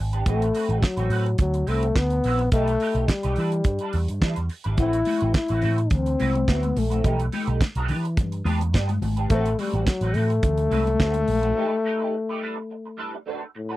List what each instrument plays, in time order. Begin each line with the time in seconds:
0.00 picked electric bass G#1
0.13 clean electric guitar B3 D4 G4 B4, closed hi-hat
0.26 picked electric bass A1, clean electric guitar A3 C4 F#4 B4, trombone A3, kick, closed hi-hat
0.42 closed hi-hat
0.54 clean electric guitar A3 C4 F#4 B4, open hi-hat
0.69 picked electric bass A1, clean electric guitar A3 C4 F#4 B4, closed hi-hat
0.82 trombone F#3, muted clean electric guitar stroke, kick, snare, closed hi-hat
0.97 picked electric bass A1, clean electric guitar A3 C4 F#4 B4, closed hi-hat
1.10 picked electric bass A2, clean electric guitar A3 C4 F#4 B4, open hi-hat
1.26 muted clean electric guitar stroke, closed hi-hat
1.38 picked electric bass D2, trombone F#3, muted clean electric guitar stroke, kick, closed hi-hat
1.54 muted clean electric guitar stroke, closed hi-hat
1.67 picked electric bass C2, trombone A3, clean electric guitar C4 E4 F#4 B4, open hi-hat
1.83 muted clean electric guitar stroke, closed hi-hat
1.96 picked electric bass D2, trombone B3, kick, snare, closed hi-hat
2.10 muted clean electric guitar stroke, closed hi-hat
2.24 picked electric bass A#1, clean electric guitar C4 E4 F#4 B4, open hi-hat
2.39 muted clean electric guitar stroke, closed hi-hat
2.52 picked electric bass B1, clean electric guitar A3 D#4 G4 B4, trombone A3, kick, closed hi-hat
2.68 closed hi-hat
2.80 clean electric guitar A3 D#4 G4 B4, open hi-hat
2.95 picked electric bass B1, clean electric guitar A3 D#4 G4 B4, closed hi-hat
3.08 trombone G3, muted clean electric guitar stroke, kick, snare, closed hi-hat
3.23 picked electric bass B1, clean electric guitar A3 D#4 G4 B4, closed hi-hat
3.36 picked electric bass E3, clean electric guitar G3 D4 E4 B4, open hi-hat
3.52 muted clean electric guitar stroke, closed hi-hat
3.64 picked electric bass G2, muted clean electric guitar stroke, kick, closed hi-hat
3.79 clean electric guitar D4 E4 B4, closed hi-hat
3.83 clean electric guitar G3
3.93 picked electric bass E2, muted clean electric guitar stroke, open hi-hat
4.08 picked electric bass G2, muted clean electric guitar stroke, closed hi-hat
4.22 picked electric bass E3, clean electric guitar G3 D4 E4 B4, kick, snare, closed hi-hat
4.36 picked electric bass E2, muted clean electric guitar stroke, closed hi-hat
4.49 muted clean electric guitar stroke, open hi-hat
4.64 picked electric bass G#1, clean electric guitar G3 D4 E4 B4, closed hi-hat
4.77 picked electric bass A1, clean electric guitar A3 C4 F#4 B4, trombone E4, kick, closed hi-hat, muted conga, low conga
4.93 closed hi-hat
5.05 clean electric guitar A3 C4 F#4 B4, open hi-hat, muted conga, high conga
5.21 picked electric bass A1, clean electric guitar A3 C4 F#4 B4, closed hi-hat
5.34 trombone E4, muted clean electric guitar stroke, kick, snare, closed hi-hat
5.48 picked electric bass A1, clean electric guitar A3 C4 F#4 B4, closed hi-hat
5.62 picked electric bass A2, clean electric guitar A3 C4 F#4 B4, open hi-hat, muted conga, low conga
5.78 muted clean electric guitar stroke, closed hi-hat
5.90 picked electric bass D2, muted clean electric guitar stroke, kick, closed hi-hat, muted conga, low conga
5.94 trombone C4
6.06 muted clean electric guitar stroke, closed hi-hat
6.19 picked electric bass C2, clean electric guitar C4 E4 F#4 B4, open hi-hat, high conga
6.35 muted clean electric guitar stroke, closed hi-hat, high conga
6.48 picked electric bass D2, trombone B3, clean electric guitar C4 E4 F#4 B4, kick, snare, closed hi-hat, muted conga
6.63 muted clean electric guitar stroke, closed hi-hat, high conga
6.76 picked electric bass A#1, trombone A3, muted clean electric guitar stroke, open hi-hat, high conga
6.90 clean electric guitar C4 E4 F#4 B4, closed hi-hat
7.03 picked electric bass B1, clean electric guitar A3 D#4 G4 B4, kick, closed hi-hat, low conga
7.20 closed hi-hat
7.32 clean electric guitar A3 D#4 G4 B4, open hi-hat, muted conga, high conga
7.47 picked electric bass B1, clean electric guitar A3 D#4 G4 B4, closed hi-hat
7.61 muted clean electric guitar stroke, kick, snare, closed hi-hat, muted conga
7.75 picked electric bass B1, clean electric guitar A3 D#4 G4 B4, closed hi-hat
7.88 picked electric bass E3, clean electric guitar B3 D4 G4 B4, open hi-hat, muted conga, low conga
8.04 muted clean electric guitar stroke, closed hi-hat
8.17 picked electric bass G2, muted clean electric guitar stroke, kick, closed hi-hat, muted conga, low conga
8.32 muted clean electric guitar stroke, closed hi-hat
8.44 picked electric bass E2, clean electric guitar B3 D4 G4 B4, open hi-hat, muted conga, high conga
8.59 muted clean electric guitar stroke, closed hi-hat, high conga
8.74 picked electric bass G2, clean electric guitar B3 D4 G4 B4, kick, snare, closed hi-hat, muted conga
8.88 muted clean electric guitar stroke, closed hi-hat, high conga
9.02 picked electric bass G#1, muted clean electric guitar stroke, open hi-hat, muted conga, high conga
9.17 clean electric guitar B3 D4 G4 B4, closed hi-hat
9.30 picked electric bass A1, trombone A3, clean electric guitar A3 C4 F#4 B4, kick, closed hi-hat, muted conga, low conga
9.46 closed hi-hat
9.59 trombone G3, clean electric guitar A3 C4 F#4 B4, open hi-hat, high conga
9.73 picked electric bass A1, clean electric guitar A3 C4 F#4 B4, closed hi-hat
9.86 trombone F#3, muted clean electric guitar stroke, kick, snare, closed hi-hat, muted conga
10.01 picked electric bass A1, clean electric guitar A3 C4 F#4 B4, closed hi-hat
10.14 picked electric bass A2, clean electric guitar A3 C4 F#4 B4, trombone A3, open hi-hat, low conga
10.30 muted clean electric guitar stroke, closed hi-hat
10.43 picked electric bass D2, muted clean electric guitar stroke, kick, closed hi-hat, low conga
10.57 muted clean electric guitar stroke, closed hi-hat
10.70 picked electric bass C2, clean electric guitar C4 E4 F#4 B4, open hi-hat, high conga
10.85 muted clean electric guitar stroke, closed hi-hat, high conga
10.99 picked electric bass D2, clean electric guitar C4 E4 F#4 B4, kick, snare, closed hi-hat, muted conga
11.14 muted clean electric guitar stroke, closed hi-hat, high conga
11.27 picked electric bass A#1, muted clean electric guitar stroke, open hi-hat, muted conga, high conga
11.42 clean electric guitar C4 E4 F#4 B4, closed hi-hat
11.56 clean electric guitar A3 D#4 G4 B4
11.85 clean electric guitar A3 D#4 G4 B4
12.01 clean electric guitar A3 D#4 G4 B4
12.13 muted clean electric guitar stroke
12.29 clean electric guitar A3 D#4 G4 B4
12.42 clean electric guitar G3 D4 E4 B4
12.56 muted clean electric guitar stroke
12.70 muted clean electric guitar stroke
12.86 muted clean electric guitar stroke
12.97 clean electric guitar G3 D4 E4 B4
13.14 muted clean electric guitar stroke
13.26 clean electric guitar A3 D4 F#4 B4
13.41 muted clean electric guitar stroke
13.55 trombone A2, muted clean electric guitar stroke
13.69 clean electric guitar A3 D4 F#4 B4